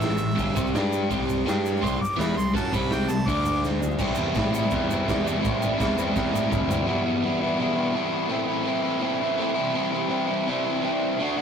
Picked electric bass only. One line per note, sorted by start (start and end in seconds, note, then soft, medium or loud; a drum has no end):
0.00 0.18 A1 medium
0.21 0.37 A1 medium
0.40 0.56 G1 loud
0.57 0.74 C2 medium
0.75 1.08 G2 medium
1.11 1.44 C2 loud
1.47 1.80 G2 medium
1.83 2.00 C2 loud
2.01 muted picked electric bass stroke soft
2.19 2.35 E2 loud
2.37 2.54 C2 medium
2.55 2.72 F#2 loud
2.73 3.06 C2 medium
3.09 3.25 C2 medium
3.26 3.95 D2 loud
4.00 4.14 C2 loud
4.19 4.33 E2 medium
4.36 4.66 A2 medium
4.72 5.02 E2 loud
5.08 5.38 E2 medium
5.45 5.74 A1 loud
5.81 6.10 E2 medium
6.17 6.31 E2 loud
6.34 6.48 A2 medium
6.53 6.82 D2 medium